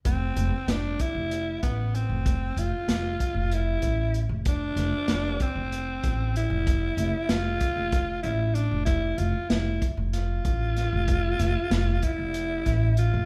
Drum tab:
HH |xxxxxxx|xxxxxxx|xxxxxxx|xxxxxxx|
SD |--o----|--o----|-oo----|--o----|
BD |o--o-o-|o--o-o-|o--o-o-|o--oo--|

HH |xxxxxxx|xxxxxxx|
SD |--o-o-o|-oo--o-|
BD |o--o-o-|o--o-o-|